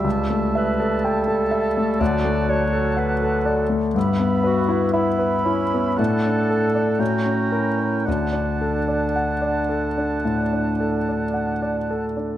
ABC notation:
X:1
M:4/4
L:1/16
Q:1/4=58
K:D
V:1 name="Flute"
a16 | b4 b4 a4 _b4 | a12- a2 z2 |]
V:2 name="Oboe"
e8 f8 | e4 e4 f4 g4 | f12- f2 z2 |]
V:3 name="Clarinet"
z2 B2 A4 d2 c2 B2 A2 | z2 F2 E4 A4 F2 E2 | D12 z4 |]
V:4 name="Grand piano"
C,, A, e A g A e A, D,, A, d A f A d A, | G,, B, B E e B E B, A,, D A d A,, C _B c | D,, D A d f d A D A,, D A d f d A D |]
V:5 name="Bassoon"
G,8 F,8 | B,4 B,2 C2 D4 C4 | D12- D2 z2 |]